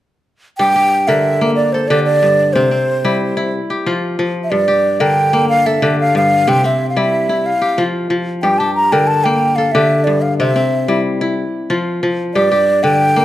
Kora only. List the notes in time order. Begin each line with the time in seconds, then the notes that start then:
0.59 G2 G4
0.76 G4
1.08 D3 A#4
1.41 A#3
1.74 A4
1.90 D3 G4
2.23 G2
2.56 C3 C4
2.71 C4
3.05 G3 E4
3.37 E4
3.70 G4
3.86 F3 F4
4.19 F3
4.52 G2
4.68 G4
5.00 D3 A#4
5.33 A#3
5.66 A4
5.82 D3 G4
6.15 G2
6.47 C3 C4
6.64 C4
6.96 G3 E4
7.29 E4
7.62 G4
7.78 F3 F4
8.10 F3
8.43 G2 G4
8.60 G4
8.92 D3 A#4
9.25 A#3
9.58 A4
9.75 D3 G4
10.07 G2
10.40 C3 C4
10.56 C4
10.88 G3 E4
11.21 E4
11.70 F3 F4
12.03 F3
12.35 G2 G4
12.52 G4
12.84 D3
13.16 A#3